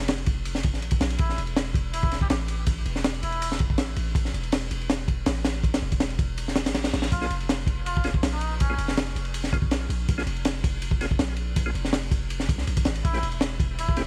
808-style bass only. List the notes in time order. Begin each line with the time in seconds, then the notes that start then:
Already playing: F1
0.27 F1
0.73 A#1
1.01 A#1
1.19 A1
1.38 E1
1.74 E1
2.30 A1
2.86 E1
3.23 E1
3.70 A1
3.97 A1
4.15 A1
4.34 E1
4.71 E1
5.27 A1
5.82 E1
6.19 E1
6.66 A1
6.93 A1
7.12 A#1
7.30 F1
7.67 F1
8.23 A#1
8.78 F1
9.15 F1
9.62 A#1
9.89 A#1
10.09 A#1
10.27 F1
10.64 F1
11.19 A#1
11.75 F1
12.11 F1
12.49 C#2
12.67 A#1
12.86 G#1
13.05 A1
13.23 E1
13.60 E1